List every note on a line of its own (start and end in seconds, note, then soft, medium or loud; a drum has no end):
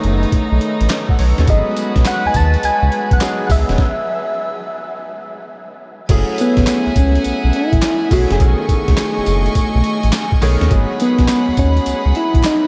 0.00 0.26 F#1 medium
0.00 1.49 D#3 medium
0.00 1.45 A3 medium
0.00 1.49 A3 medium
0.00 1.46 B3 medium
0.00 1.39 C#4 medium
0.00 1.46 D#4 medium
0.00 1.49 G#4 medium
0.00 closed hi-hat medium
0.23 closed hi-hat soft
0.32 0.40 B1 medium
0.32 kick medium
0.32 closed hi-hat medium
0.52 0.59 B1 medium
0.61 closed hi-hat medium
0.81 0.88 A1 loud
0.81 closed hi-hat medium
0.89 snare loud
0.89 clap medium
0.89 clap loud
0.89 closed hi-hat medium
1.09 1.19 A4 medium
1.09 1.19 F#5 medium
1.09 kick medium
1.19 1.34 B1 medium
1.19 1.37 C#5 medium
1.19 open hi-hat medium
1.38 1.46 D#2 medium
1.38 1.66 C#4 medium
1.38 1.66 A4 medium
1.38 snare medium
1.38 closed hi-hat medium
1.47 1.62 G#1 loud
1.47 2.39 F#3 medium
1.47 3.76 G#3 medium
1.47 2.39 B3 medium
1.47 2.39 D#4 medium
1.47 3.76 F#4 medium
1.47 2.40 G#4 medium
1.47 3.76 B4 medium
1.47 2.09 D#5 medium
1.47 kick loud
1.47 closed hi-hat medium
1.47 tambourine medium
1.76 closed hi-hat medium
1.76 tambourine medium
1.96 2.03 B1 medium
1.96 kick medium
1.96 snare medium
1.96 closed hi-hat medium
2.05 2.28 F#5 loud
2.05 snare loud
2.05 clap medium
2.05 clap loud
2.05 closed hi-hat medium
2.05 tambourine medium
2.25 2.29 D#2 soft
2.25 2.35 G#5 medium
2.34 2.57 D#2 loud
2.34 2.67 A5 loud
2.34 kick medium
2.34 closed hi-hat medium
2.34 tambourine medium
2.54 closed hi-hat soft
2.63 2.71 C#2 soft
2.63 3.12 G#5 loud
2.63 closed hi-hat medium
2.63 tambourine medium
2.83 2.90 C#2 loud
2.92 closed hi-hat medium
3.11 3.19 B1 loud
3.11 3.47 F#5 loud
3.11 kick loud
3.11 closed hi-hat medium
3.20 3.46 F#3 medium
3.20 3.46 B3 medium
3.20 3.46 D#4 medium
3.20 3.46 G#4 medium
3.20 snare loud
3.20 clap medium
3.20 closed hi-hat medium
3.20 tambourine loud
3.47 3.64 C#2 medium
3.47 3.74 F#3 medium
3.47 3.74 B3 medium
3.47 3.75 D#4 medium
3.47 3.75 G#4 medium
3.47 3.53 F#5 medium
3.47 kick medium
3.47 open hi-hat medium
3.47 tambourine medium
3.52 5.53 E5 loud
3.69 3.76 E1 medium
3.69 snare medium
3.69 closed hi-hat medium
3.78 kick loud
3.78 snare medium
6.09 6.24 F#1 loud
6.09 7.01 F#3 medium
6.09 7.01 A3 medium
6.09 7.01 C#4 medium
6.09 7.01 E4 medium
6.09 7.01 G#4 loud
6.09 8.38 E5 medium
6.09 8.38 F#5 medium
6.09 8.38 G#5 medium
6.09 kick loud
6.09 closed hi-hat medium
6.09 crash loud
6.09 tambourine medium
6.38 7.01 B3 loud
6.38 closed hi-hat medium
6.38 tambourine medium
6.57 6.65 A1 loud
6.57 kick medium
6.57 snare medium
6.57 closed hi-hat medium
6.67 snare loud
6.67 clap medium
6.67 closed hi-hat medium
6.67 tambourine loud
6.86 6.90 C#2 medium
6.96 7.18 C#2 medium
6.96 7.55 C#4 loud
6.96 kick loud
6.96 closed hi-hat medium
6.96 tambourine medium
7.15 closed hi-hat medium
7.24 7.33 B1 medium
7.24 closed hi-hat medium
7.24 tambourine medium
7.44 7.51 B1 loud
7.53 8.15 E4 loud
7.53 closed hi-hat medium
7.73 7.80 A1 loud
7.73 kick loud
7.73 closed hi-hat medium
7.82 snare loud
7.82 clap medium
7.82 clap loud
7.82 closed hi-hat medium
7.82 tambourine medium
8.11 8.26 B1 medium
8.11 8.36 F#3 medium
8.11 8.36 A3 medium
8.11 8.36 C#4 medium
8.11 8.36 E4 medium
8.11 8.31 F#4 loud
8.11 8.37 G#4 medium
8.11 kick medium
8.11 open hi-hat medium
8.11 tambourine medium
8.30 8.38 F#1 loud
8.30 10.01 G#4 loud
8.30 snare medium
8.30 closed hi-hat medium
8.40 8.55 B1 loud
8.40 9.31 D#3 medium
8.40 9.31 A3 medium
8.40 10.69 A3 medium
8.40 9.31 B3 medium
8.40 9.31 C#4 medium
8.40 9.31 G#4 medium
8.40 10.69 D#5 medium
8.40 10.69 G#5 medium
8.40 10.69 C#6 medium
8.40 kick loud
8.40 closed hi-hat medium
8.40 tambourine medium
8.69 kick medium
8.69 closed hi-hat medium
8.69 tambourine medium
8.88 8.96 C#2 medium
8.88 kick medium
8.88 snare medium
8.88 closed hi-hat medium
8.97 snare loud
8.97 clap medium
8.97 closed hi-hat medium
8.97 tambourine medium
9.17 9.21 F#1 soft
9.26 9.49 F#1 medium
9.26 closed hi-hat medium
9.26 tambourine medium
9.46 closed hi-hat soft
9.55 9.63 B1 medium
9.55 kick medium
9.55 closed hi-hat medium
9.55 tambourine medium
9.75 9.82 B1 medium
9.84 closed hi-hat medium
10.03 10.11 A1 loud
10.03 closed hi-hat medium
10.12 snare loud
10.12 clap medium
10.12 clap loud
10.12 closed hi-hat medium
10.12 tambourine loud
10.32 kick medium
10.41 10.57 B1 medium
10.41 10.66 D#3 loud
10.41 10.66 A3 medium
10.41 10.67 B3 medium
10.41 10.67 C#4 medium
10.41 10.67 G#4 loud
10.41 open hi-hat medium
10.41 tambourine medium
10.61 10.69 D#2 loud
10.61 snare medium
10.61 closed hi-hat medium
10.71 10.86 G#1 loud
10.71 11.62 F#3 medium
10.71 11.62 G#3 medium
10.71 11.62 B3 medium
10.71 11.62 D#4 medium
10.71 12.67 G#4 medium
10.71 11.62 G#4 loud
10.71 12.67 F#5 medium
10.71 12.67 B5 medium
10.71 kick loud
10.71 closed hi-hat medium
10.71 tambourine medium
11.00 11.61 B3 loud
11.00 closed hi-hat medium
11.00 tambourine medium
11.19 11.26 B1 loud
11.19 kick medium
11.19 snare medium
11.19 closed hi-hat medium
11.28 snare loud
11.28 clap medium
11.28 clap loud
11.28 closed hi-hat medium
11.28 tambourine medium
11.48 11.52 D#2 medium
11.57 11.80 D#2 loud
11.57 12.18 C#4 loud
11.57 kick loud
11.57 closed hi-hat medium
11.57 tambourine medium
11.77 closed hi-hat soft
11.86 11.94 C#2 medium
11.86 closed hi-hat medium
11.86 tambourine medium
12.06 12.13 C#2 loud
12.15 12.47 E4 loud
12.15 closed hi-hat medium
12.34 12.42 B1 loud
12.34 kick loud
12.34 closed hi-hat medium
12.43 12.67 D#4 loud
12.43 snare loud
12.43 clap medium
12.43 closed hi-hat medium
12.43 tambourine loud